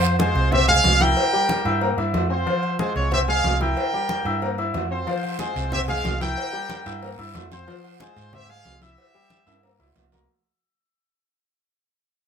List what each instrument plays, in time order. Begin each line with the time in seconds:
Already playing: fingered electric bass F2, upright piano F3 F4 F5, trumpet section F4 C5
0.02 high conga, low agogo
0.19 upright piano G#3 G#4 G#5, trumpet section F4 C5, cowbell, high conga, low timbale
0.35 fingered electric bass C2, cowbell
0.51 upright piano C4 C5 C6, trumpet section G4 E5, cowbell, high conga, low conga, low agogo
0.67 upright piano G#3 G#4 G#5, trumpet section G#4 F5, high conga, low conga, low agogo
0.84 fingered electric bass C2, cowbell, high conga, low timbale
1.00 upright piano E4 E5 E6, trumpet section A#4 G5, cowbell, high conga, low agogo
1.17 cowbell, high conga, low agogo
1.33 upright piano G3 G4 G5, high conga
1.49 cowbell, high conga, low timbale, low agogo
1.65 fingered electric bass G2, upright piano E4 E5 E6, cowbell, high conga, low agogo
1.81 upright piano A#3 A#4 A#5, cowbell, high conga
1.97 fingered electric bass G2, upright piano E4 E5 E6, cowbell, high conga, low agogo
2.14 fingered electric bass F2, cowbell, high conga, low timbale, low agogo
2.30 upright piano C4 C5 C6, trumpet section F4 C5
2.46 upright piano F3 F4 F5, cowbell, high conga, low agogo
2.63 high conga, low agogo
2.79 upright piano G#3 G#4 G#5, trumpet section F4 C5, cowbell, high conga, low timbale
2.95 fingered electric bass C2, trumpet section F4 C#5, cowbell
3.12 upright piano C4 C5 C6, trumpet section G4 E5, cowbell, high conga, low conga, low agogo
3.28 upright piano G#3 G#4 G#5, trumpet section G#4 F5, high conga, low agogo
3.44 fingered electric bass C2, cowbell, high conga, low timbale
3.61 upright piano E4 E5 E6, trumpet section A#4 G5, cowbell, high conga, low agogo
3.77 cowbell, high conga, low agogo
3.93 upright piano G3 G4 G5, high conga
4.09 cowbell, high conga, low timbale, low agogo
4.25 fingered electric bass G2, upright piano E4 E5 E6, cowbell, high conga, low agogo
4.42 upright piano A#3 A#4 A#5, cowbell, high conga
4.58 upright piano E4 E5 E6, cowbell, high conga, low agogo
4.74 fingered electric bass F2, cowbell, high conga, low timbale, low agogo
4.91 upright piano C4 C5 C6, trumpet section F4 C5
5.07 upright piano F3 F4 F5, cowbell, high conga, low agogo, long guiro
5.23 high conga, low agogo
5.39 upright piano G#3 G#4 G#5, trumpet section F4 C5, cowbell, high conga, low timbale, short guiro
5.56 fingered electric bass C2, cowbell, short guiro
5.72 upright piano C4 C5 C6, trumpet section G4 E5, cowbell, high conga, low conga, low agogo, long guiro
5.88 upright piano G#3 G#4 G#5, trumpet section G#4 F5, high conga, low conga, low agogo
6.04 fingered electric bass C2, cowbell, high conga, low timbale, short guiro
6.20 upright piano E4 E5 E6, trumpet section A#4 G5, cowbell, high conga, low agogo, short guiro
6.37 cowbell, high conga, low agogo, long guiro
6.53 upright piano G3 G4 G5, high conga
6.70 cowbell, high conga, low timbale, low agogo, short guiro
6.86 fingered electric bass G2, upright piano E4 E5 E6, cowbell, high conga, low agogo, short guiro
7.02 upright piano A#3 A#4 A#5, cowbell, high conga, long guiro
7.19 fingered electric bass G2, upright piano E4 E5 E6, cowbell, high conga, low agogo
7.35 fingered electric bass F2, cowbell, high conga, low timbale, low agogo, short guiro
7.51 upright piano C4 C5 C6, trumpet section F4 C5, high conga, short guiro
7.67 upright piano F3 F4 F5, cowbell, high conga, low agogo, long guiro
7.84 high conga, low agogo
8.00 upright piano G#3 G#4 G#5, trumpet section F4 C5, cowbell, high conga, low timbale, short guiro
8.16 fingered electric bass G#2, cowbell, short guiro
8.33 upright piano C4 C5 C6, trumpet section G4 E5, cowbell, high conga, low conga, low agogo, long guiro
8.49 upright piano G#3 G#4 G#5, trumpet section G#4 F5, high conga, low agogo
8.65 fingered electric bass C2, cowbell, high conga, low timbale, short guiro
8.81 upright piano E4 E5 E6, trumpet section G4 E5, cowbell, high conga, low agogo, short guiro
8.98 cowbell, low agogo, long guiro
9.14 upright piano G3 G4 G5, high conga
9.30 cowbell, high conga, low timbale, low agogo, short guiro
9.46 fingered electric bass G2, upright piano E4 E5 E6, cowbell, high conga, high timbale, low agogo, short guiro
9.63 upright piano A#3 A#4 A#5, cowbell, high conga, long guiro
9.79 fingered electric bass C#2, upright piano E4 E5 E6, cowbell, high conga, low timbale, low agogo
9.96 fingered electric bass C2, cowbell, high conga, low timbale, low agogo, short guiro
10.12 upright piano A#3 A#4 A#5, high conga, low timbale, short guiro